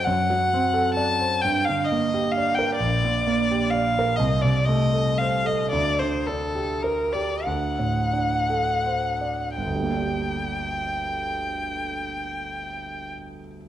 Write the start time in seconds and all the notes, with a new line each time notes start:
0.04 F#2 F#5
0.30 F#3
0.54 C4
0.74 A4
0.94 D5 A5
1.20 C5
1.42 G2 G5
1.65 D3 F5
1.84 D#5
1.92 A#3
2.14 G4
2.31 F5
2.38 D5
2.55 G5
2.59 A#4
2.75 D5
2.80 A#1
3.04 A#2
3.27 A#3
3.51 G4
3.70 D5 F5
3.99 A#4
4.16 C2 D#5
4.41 C3 D5
4.65 A3 D#5
4.93 A4
5.18 C5 F5
5.45 A4 D#5
5.70 D2 D5
5.99 D3 C5
6.27 D4 A4
6.55 G4
6.82 A#4
7.13 G4 D5
7.45 D2 F#5
7.79 A2
8.13 D4
8.50 A4
8.86 C5
9.21 D5
9.56 G1 G5
9.66 D2
9.74 G3
9.83 A#3
9.92 D4
10.01 G4